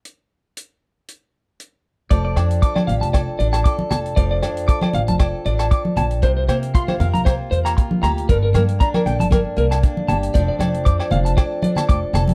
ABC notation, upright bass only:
X:1
M:4/4
L:1/16
Q:"Swing 16ths" 1/4=117
K:F
V:1 name="Upright bass" clef=bass
z16 | F,,,2 F,,2 z2 A,,, F,,,2 z A,,,2 z2 F,,,2 | F,,,2 F,,2 z2 A,,, F,,,2 z A,,,2 z2 B,,,2 | C,,2 C,2 z2 F,, C,,2 z E,,2 z2 D,,2 |
G,,,2 G,,2 z2 B,,, G,,,2 z C,,2 z2 G,,,2 | F,,, z F,,,2 F,, z F,,,2 z4 F,,, z F,,,2 |]